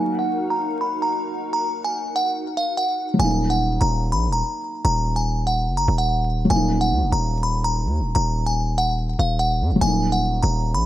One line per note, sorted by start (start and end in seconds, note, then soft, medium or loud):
0.00 3.12 F#3 medium
0.00 3.15 A#3 medium
0.00 3.16 D#4 medium
0.00 3.18 D#4 medium
0.00 3.15 F#4 medium
0.00 3.15 A#4 medium
0.00 3.15 F#5 medium
0.00 0.17 G#5 medium
0.19 0.48 F#5 medium
0.50 0.79 A#5 medium
0.81 0.97 B5 medium
1.02 1.51 A#5 medium
1.53 1.82 A#5 medium
1.84 2.14 G#5 medium
2.16 2.32 F#5 medium
2.57 2.73 F5 medium
2.77 3.16 F#5 medium
3.14 6.43 F#3 medium
3.19 3.79 D#1 loud
3.19 6.46 A#3 medium
3.19 3.48 G#5 loud
3.24 6.49 D#4 medium
3.50 3.79 F#5 medium
3.81 4.14 D#1 loud
3.81 4.10 A#5 medium
4.12 4.29 A#1 loud
4.12 4.28 B5 medium
4.28 4.43 D#1 loud
4.33 4.81 A#5 medium
4.85 5.69 D#1 loud
4.85 5.14 A#5 medium
5.16 5.45 G#5 medium
5.47 5.76 F#5 medium
5.67 5.87 F#1 loud
5.77 5.93 A#5 medium
5.88 6.48 D#1 loud
5.98 6.47 F#5 medium
6.45 9.74 F#3 medium
6.50 6.93 D#1 loud
6.50 9.77 A#3 medium
6.50 6.79 G#5 medium
6.56 9.80 D#4 medium
6.81 7.10 F#5 medium
6.92 7.03 D#2 loud
7.02 7.12 D#1 loud
7.12 7.86 D#1 loud
7.12 7.41 A#5 medium
7.43 7.59 B5 medium
7.64 8.13 A#5 medium
7.85 8.02 D#2 loud
8.00 8.15 D#1 loud
8.15 9.15 D#1 loud
8.15 8.44 A#5 medium
8.46 8.76 G#5 medium
8.78 8.94 F#5 medium
9.19 9.62 D#1 loud
9.19 9.35 F5 medium
9.39 9.78 F#5 medium
9.61 9.72 F#2 loud
9.71 9.81 D#1 loud
9.76 10.86 F#3 medium
9.81 10.41 D#1 loud
9.81 10.86 A#3 medium
9.81 10.11 G#5 loud
9.87 10.86 D#4 medium
10.12 10.41 F#5 medium
10.42 10.76 D#1 loud
10.42 10.72 A#5 medium
10.74 10.86 A#1 loud
10.74 10.86 B5 medium